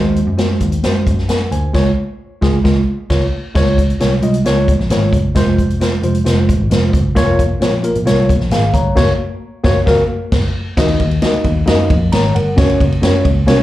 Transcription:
Already playing: D#2 G#3 F#4 C5
0.16 closed hi-hat
0.27 F#2
0.37 G#3 F#4 C5, snare, closed hi-hat
0.60 D#2, kick, closed hi-hat
0.72 closed hi-hat
0.83 F#2 G#3 F#4 C5, snare, closed hi-hat
1.07 F#2, kick, closed hi-hat
1.18 snare
1.29 A#4 F#5, snare, closed hi-hat
1.51 D2 C5 G#5, closed hi-hat
1.73 C#2 G#3 F4 C#5, kick, snare, crash
2.41 C#2 G#3 F4 G#4, kick, snare
2.64 C#2 G#3 F4, kick, snare
3.10 C#2 F4 C#5, kick, snare, crash
3.55 C#2 G#3 F4 C#5, kick, snare, crash
3.78 kick, closed hi-hat
3.90 closed hi-hat
4.00 C2 G#3 F4 C#5, snare, closed hi-hat
4.22 C2 G#3 F4 D#5, closed hi-hat
4.34 closed hi-hat
4.45 C#2 G#3 F4 C#5, snare, closed hi-hat
4.68 kick, closed hi-hat
4.79 A#1, snare
4.90 G#1 G#3 F4 C#5, snare, closed hi-hat
5.13 F#1, kick, closed hi-hat
5.35 F1 G#3 F4 C5, kick, snare, closed hi-hat
5.58 kick, closed hi-hat
5.70 closed hi-hat
5.80 G#3 F4 C5, snare, closed hi-hat
6.03 F1 G#3 F4 C5, closed hi-hat
6.15 closed hi-hat
6.25 F1 G#3 F4 C5, snare, closed hi-hat
6.49 kick, closed hi-hat
6.60 G#1
6.70 F1 G#3 F4 C5, snare, closed hi-hat
6.93 F#1, kick, closed hi-hat
7.15 F1 A#3 F4 C#5, kick, snare, closed hi-hat
7.39 kick, closed hi-hat
7.60 A#1 A#3 F4 C#5, snare, closed hi-hat
7.83 A#3 F4 A#4, closed hi-hat
7.95 A#1, closed hi-hat
8.05 C2 A#3 F4 C#5, snare, closed hi-hat
8.29 kick, closed hi-hat
8.40 A#1, snare
8.51 G#1 G#4 F5, snare, closed hi-hat
8.74 G1 C#5 A#5, kick, closed hi-hat
8.95 F#1 A#3 F#4 C#5, kick, snare, crash
9.63 F#1 A#3 F#4 C#5, kick, snare
9.86 F#1 A#3 F#4 A#4, kick, snare
10.32 F#1, kick, snare, crash
10.77 D#2 A#3 D#4 F#4 D#5, kick, snare, crash
10.88 ride
11.00 D#2, kick, ride
11.11 ride
11.22 A#3 D#4 F#4 D#5, snare, ride
11.34 muted picked electric bass stroke
11.44 D#2, kick, ride
11.66 F#2 A#3 D#4 F#4 D#5, snare, ride
11.90 F2, kick, ride
12.12 G#1 C#5 A#5, snare, ride
12.35 G1 A#4 F#5, ride
12.57 F#1 A#3 C#4 F#4 C#5, kick, snare, ride
12.70 ride
12.80 F#1, kick, ride
12.92 ride
13.02 F#2 A#3 C#4 F#4 C#5, snare, ride
13.25 C#2, kick, ride
13.47 C2 A#3 C#4 F#4 C#5, snare, ride

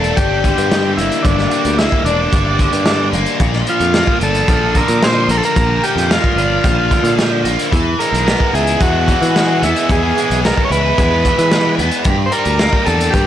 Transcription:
Already playing: E1 G2 G3 A#3 D4 A4
0.04 closed hi-hat
0.16 G1 G3 G4, kick, closed hi-hat
0.44 D3, kick, closed hi-hat
0.58 G2, closed hi-hat
0.71 G3, snare, closed hi-hat
0.97 G1 A#3 E4, closed hi-hat
1.12 closed hi-hat
1.22 G1 G2 D4, kick, closed hi-hat
1.38 snare
1.51 G3, closed hi-hat
1.65 D2, closed hi-hat
1.78 A#3 E4, snare, closed hi-hat
1.92 kick
2.04 E1 D4, closed hi-hat
2.33 G1 G3, kick, closed hi-hat
2.59 D3, kick, closed hi-hat
2.73 G2, closed hi-hat
2.85 G3, snare, closed hi-hat
3.13 G1 A#3, closed hi-hat
3.26 closed hi-hat
3.40 A#1 A#2, kick, closed hi-hat
3.53 snare
3.67 F3 F4, closed hi-hat
3.80 F2, closed hi-hat
3.94 A#3, snare, closed hi-hat
4.07 kick
4.21 G1 D4 A4, closed hi-hat
4.35 closed hi-hat
4.48 A#1 F3, kick, closed hi-hat
4.75 D3 A#4, kick, closed hi-hat
4.88 A#2, closed hi-hat
5.02 F3 C5, snare, closed hi-hat
5.29 A#1 A#3 A#4, closed hi-hat
5.38 A4
5.43 A#4, closed hi-hat
5.56 A#1 A#2, kick, closed hi-hat
5.83 F3 G4, closed hi-hat
5.96 F2, closed hi-hat
6.11 A#3 F4, snare, closed hi-hat
6.24 kick
6.36 G1 D4, closed hi-hat
6.64 A#1 F3, kick, closed hi-hat
6.91 D3, kick, closed hi-hat
7.03 A#2, closed hi-hat
7.18 F3, snare, closed hi-hat
7.45 A#1 A#3, closed hi-hat
7.59 closed hi-hat
7.71 E2 E3 B3 G#4 E5 G#5, kick, closed hi-hat
7.99 G#3 A#4, closed hi-hat
8.13 B1, closed hi-hat
8.26 B3, snare, closed hi-hat
8.40 kick
8.53 C#2 E4 G#4, closed hi-hat
8.67 closed hi-hat
8.80 E2 G#3 F#4, kick, closed hi-hat
9.08 E3, kick, closed hi-hat
9.22 E3, closed hi-hat
9.35 G#3, snare, closed hi-hat
9.62 E2 B3 E4, closed hi-hat
9.76 closed hi-hat
9.89 E2 E3 G#4, kick, closed hi-hat
10.17 G#3, closed hi-hat
10.30 B1, closed hi-hat
10.44 B3 A#4, snare, closed hi-hat
10.57 kick
10.65 C#5
10.70 C#2 E4 B4, closed hi-hat
10.98 E2 G#3, kick, closed hi-hat
11.25 E3, kick, closed hi-hat
11.39 E3, closed hi-hat
11.51 G#3, snare, closed hi-hat
11.79 E2 B3, closed hi-hat
11.91 closed hi-hat
12.04 G2 G4 A#4 D5 G5, kick, closed hi-hat
12.26 C5
12.32 G3 A#4, closed hi-hat
12.45 D2, closed hi-hat
12.59 A#3, snare, closed hi-hat
12.73 kick
12.86 E2 D4 A4, closed hi-hat
13.01 closed hi-hat
13.10 G2 G3 G4, kick, closed hi-hat

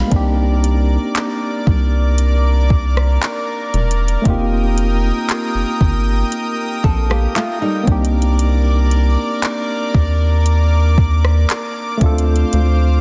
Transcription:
Already playing: G#3 B3 D4 F4 G4 B5
0.08 A#3 C4, kick, closed hi-hat
0.12 C2 D4 D#4 A#4 D5 D6
0.16 G4
0.64 closed hi-hat
1.15 clap, closed hi-hat
1.67 C2, kick
2.18 closed hi-hat
2.70 kick
2.97 cross-stick
3.23 clap, closed hi-hat
3.74 E1, closed hi-hat
3.91 closed hi-hat
4.08 closed hi-hat
4.22 F1 A3 C4 G5 D#6, kick, closed hi-hat
4.26 A#3 D#4 F4
4.30 G4
4.78 closed hi-hat
5.29 clap, closed hi-hat
5.55 G1
5.81 G1, kick
6.32 closed hi-hat
6.84 A#1 C4 A4, kick
7.10 A#3 G4, cross-stick
7.36 A3 F4, clap, closed hi-hat
7.62 G3 D#4
7.83 A#3 C4 D6
7.87 C2 D4 D#4 A#4 D5, kick, closed hi-hat
7.92 G4
8.05 closed hi-hat
8.22 closed hi-hat
8.39 closed hi-hat
8.91 closed hi-hat
9.43 clap, closed hi-hat
9.94 D#2, kick
10.46 closed hi-hat
10.98 kick
11.25 cross-stick
11.50 clap, closed hi-hat
11.97 D2 A3 C4 C5 F5, kick, closed hi-hat
12.02 D4 F4
12.06 A4
12.18 closed hi-hat
12.36 closed hi-hat
12.53 D2, closed hi-hat

